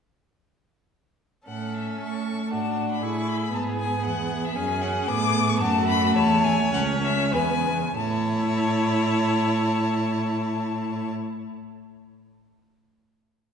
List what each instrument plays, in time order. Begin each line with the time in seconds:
1.48 cello A2, viola C#4, violin A4 F#5
1.74 violin E5
2.01 cello A3, violin C#6
2.51 cello A2, viola D4, violin F#4 A5
2.92 violin B5
3.02 cello A2, viola E4, violin G#4 C#6
3.29 violin B5
3.53 cello G#2, viola B3, violin A5
3.80 violin G#5
4.05 cello E2, violin F#5
4.45 violin E5
4.56 cello F#2, viola C#4, violin G#4 G#5
4.82 violin F#5
5.07 cello A2, viola B3, violin D6
5.49 violin C#6
5.60 cello F#2, viola A3, violin F#4 A5
5.88 violin B5
6.15 cello E2, violin C#5 A5
6.44 violin G#5
6.73 cello C#2, viola C#4, violin F#5
7.03 violin E5
7.33 cello E2, viola B3, violin B4 G#5
7.97 cello A2, viola E4, violin C#5 A5